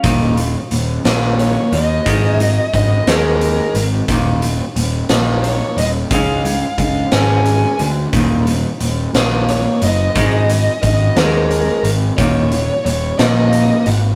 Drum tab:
HH |xxxxxx|xxxxxx|xxxxxx|xxxxxx|
SD |---o--|---o--|---o--|---o--|
BD |o-----|o-o---|o-----|o-o---|

HH |xxxxxx|xxxxxx|xxxxxx|
SD |---o--|---o--|---o--|
BD |o-----|o-o---|o-----|